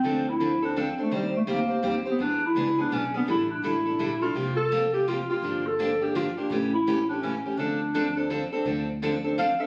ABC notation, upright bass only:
X:1
M:3/4
L:1/8
Q:"Swing" 1/4=167
K:Dm
V:1 name="Upright bass" clef=bass
D,,6 | _E,,2 D,,2 E,,2 | E,,2 ^C,,2 =B,,,2 | A,,,2 A,,,2 B,,,2 |
C,,6 | G,,,6 | A,,,6 | D,,6 |
D,,6 |]